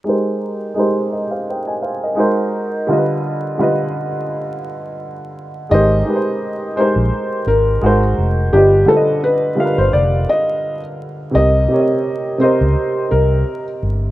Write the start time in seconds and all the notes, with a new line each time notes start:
0.04 G#3 D#4 G4 A#4
0.09 C5
0.74 G#3 D#4 G4 A#4
0.79 C5
1.12 A#4 D#5
1.31 C5 F5
1.50 C5 G5
1.67 D#5 G#5
1.82 C5 F5
2.03 A#4 D#5
2.15 G#3 D#4 F#4 A#4
2.20 C5
2.87 D3 G3 F4 A#4
2.92 D#5
2.97 B4
3.58 D3 G3 F4 B4
3.62 D#5
5.69 G#1 G#3 D#4 G4 A#4 D#5
5.74 C5
6.05 G#3 D#4 G4 A#4
6.10 B4
6.16 C5
6.76 G#3 D#4 G4 A#4 C5
6.81 C5
6.96 A#1
7.47 G#1 A#4
7.82 G#1 G#3 D#4 F#4 A#4
7.86 C5
8.18 F1
8.52 G1 G3 D4 F4 G4 B4
8.57 D#5
8.85 D3 G3 F4 A4 B4
8.90 C5
8.97 D#5
9.24 B4
9.55 D3 G3 F4 A#4
9.60 F5
9.65 B4
9.78 G1 C5
9.93 F1 D5
10.29 D#5
11.31 C2 C3 C4 G4 A#4 D#5
11.36 D#5
11.68 C3 C4 G4 A#4
11.74 C#5
11.80 D#5
12.38 C3 C4 G4 A#4 C5
12.43 D#5
12.61 C#2
13.11 C2 A#4
13.83 G1